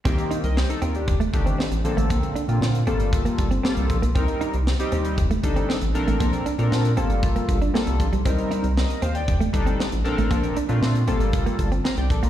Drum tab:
HH |xxxx-xxxxxxx-xxx|xxxx-xxxxxxx-xxx|xxxx-xxxxxxx-xxx|xxxx-xxxxxxx-xxx|
SD |----o-------o---|----o-------o---|----o-------o---|----o-------o---|
BD |o-------o-o-----|o-------o-o---o-|o-------o-o-----|o-------o-o---o-|

HH |xxxx-xxxxxxx-xxx|xxxx-xxxxxxx-xxx|
SD |----o-------o---|----o-------o---|
BD |o-------o-o-----|o-------o-o---o-|